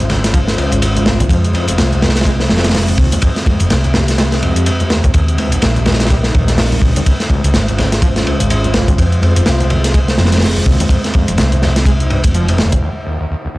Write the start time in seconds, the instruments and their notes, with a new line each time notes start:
Already playing: fingered electric bass G#1, analog synth pad G#3 C#4 F4 C5
0.00 acid bass C2, closed hi-hat
0.10 acid bass C#2, snare, ride, low conga
0.24 snare, closed hi-hat
0.34 acid bass F3, kick, closed hi-hat, ride
0.48 snare, closed hi-hat
0.58 acid bass C#2, ride, high conga
0.72 fingered electric bass G#1, closed hi-hat, ride
0.82 acid bass F2, closed hi-hat, ride
0.95 acid bass C2, closed hi-hat, high conga
1.06 acid bass C2, snare, ride
1.20 acid bass C2, kick, closed hi-hat, high conga, low conga
1.29 fingered electric bass F2, acid bass F2, analog synth pad C4, kick, closed hi-hat, ride
1.44 closed hi-hat
1.53 acid bass F2, ride, high conga
1.68 fingered electric bass F1, acid bass F2, closed hi-hat, ride
1.78 fingered electric bass C2, acid bass F2, snare, closed hi-hat, ride
1.92 acid bass D#2, closed hi-hat
2.02 acid bass F2, snare, ride, low conga
2.09 snare, ride
2.16 snare, closed hi-hat, ride
2.21 snare, ride
2.25 acid bass G#3, kick, closed hi-hat, ride
2.40 snare, closed hi-hat
2.49 fingered electric bass F1, acid bass F2, snare, ride, high conga
2.57 snare, ride
2.64 snare, closed hi-hat, ride
2.69 snare, ride
2.74 acid bass G#2, snare, closed hi-hat, open hi-hat
2.88 acid bass D#2, closed hi-hat, high conga
2.98 fingered electric bass C2, acid bass D#2, kick, ride
3.12 acid bass D#2, closed hi-hat, high conga, low conga
3.22 acid bass F2, analog synth pad G4, kick, closed hi-hat, ride
3.36 snare, closed hi-hat
3.46 acid bass F2, kick, ride, high conga
3.59 fingered electric bass F1, acid bass F2, closed hi-hat, ride
3.70 fingered electric bass C2, acid bass F2, snare, closed hi-hat, ride
3.84 acid bass D#2, closed hi-hat
3.94 acid bass F2, snare, ride, low conga
4.08 snare, closed hi-hat
4.18 acid bass G#3, snare, closed hi-hat, ride
4.32 snare, closed hi-hat
4.42 acid bass F2, ride, high conga
4.56 fingered electric bass F2, closed hi-hat, ride
4.66 acid bass G#2, closed hi-hat, ride
4.80 acid bass D#2, closed hi-hat, high conga
4.90 acid bass D#2, snare, ride
5.04 acid bass D#2, kick, closed hi-hat, high conga, low conga
5.14 acid bass D#2, fingered electric bass D#2, analog synth pad G3 D#4 A#4, kick, closed hi-hat, ride
5.28 closed hi-hat
5.38 acid bass D#2, ride, high conga
5.52 fingered electric bass A#1, acid bass D#2, closed hi-hat, ride
5.62 fingered electric bass A#1, acid bass D#2, snare, closed hi-hat, ride
5.76 acid bass C#2, closed hi-hat
5.86 acid bass D#2, snare, ride, low conga
5.92 snare, ride
6.00 snare, closed hi-hat, ride
6.05 snare, ride
6.10 acid bass G3, kick, closed hi-hat, ride
6.24 snare, closed hi-hat
6.34 fingered electric bass A#1, acid bass D#2, kick, ride, high conga
6.48 snare, closed hi-hat
6.58 acid bass G2, snare, closed hi-hat, open hi-hat
6.72 acid bass C#2, closed hi-hat, high conga
6.82 fingered electric bass A#1, acid bass C#2, kick, ride
6.96 acid bass C#2, closed hi-hat, high conga, low conga
7.06 acid bass C#2, analog synth pad G#3 C#4 F4 C5, kick, closed hi-hat, ride
7.20 snare, closed hi-hat
7.30 acid bass C#2, kick, ride, high conga
7.44 fingered electric bass C#2, acid bass C#2, closed hi-hat, ride
7.54 fingered electric bass G#1, acid bass C#2, snare, closed hi-hat, ride
7.68 acid bass C2, closed hi-hat
7.78 acid bass C#2, snare, ride, low conga
7.92 snare, closed hi-hat
8.02 acid bass F3, kick, closed hi-hat, ride
8.16 snare, closed hi-hat
8.26 acid bass C#2, ride, high conga
8.40 fingered electric bass G#1, closed hi-hat, ride
8.50 acid bass F2, closed hi-hat, ride
8.64 acid bass C2, closed hi-hat, high conga
8.74 acid bass C2, snare, ride
8.88 acid bass C2, kick, closed hi-hat, high conga, low conga
8.98 acid bass F2, fingered electric bass F2, analog synth pad G#3 C4, kick, closed hi-hat, ride
9.12 closed hi-hat
9.22 acid bass F2, ride, high conga
9.36 fingered electric bass F1, acid bass F2, closed hi-hat, ride
9.46 fingered electric bass C2, acid bass F2, snare, closed hi-hat, ride
9.60 acid bass D#2, closed hi-hat
9.70 acid bass F2, ride, low conga
9.84 snare, closed hi-hat
9.94 acid bass G#3, kick, closed hi-hat, ride
10.08 snare, closed hi-hat
10.18 fingered electric bass F1, acid bass F2, snare, ride, high conga
10.25 snare, ride
10.32 snare, closed hi-hat, ride
10.37 snare, ride
10.42 acid bass G#2, snare, closed hi-hat, open hi-hat
10.56 acid bass D#2, closed hi-hat, high conga
10.66 fingered electric bass C2, acid bass D#2, kick, ride
10.80 acid bass D#2, closed hi-hat, high conga, low conga
10.89 acid bass F2, analog synth pad D#4, kick, closed hi-hat, ride
11.04 snare, closed hi-hat
11.14 acid bass F2, kick, ride, high conga
11.28 fingered electric bass F1, acid bass F2, closed hi-hat, ride
11.38 fingered electric bass C2, acid bass F2, snare, closed hi-hat, ride
11.52 acid bass D#2, closed hi-hat
11.62 acid bass F2, snare, ride, low conga
11.76 snare, closed hi-hat
11.85 acid bass G#3, kick, closed hi-hat, ride
12.00 closed hi-hat
12.10 acid bass G2, ride, high conga
12.24 fingered electric bass F1, kick, closed hi-hat, ride
12.34 acid bass F3, closed hi-hat
12.48 acid bass F2, closed hi-hat, ride, high conga
12.58 acid bass D#2, snare, ride
12.72 acid bass F2, kick, closed hi-hat, high conga, low conga
12.82 acid bass D#2, analog synth pad A#3 D#4 G4 C5
13.06 acid bass D#2
13.20 acid bass D#2
13.31 acid bass D#2
13.45 acid bass C#2
13.55 acid bass D#2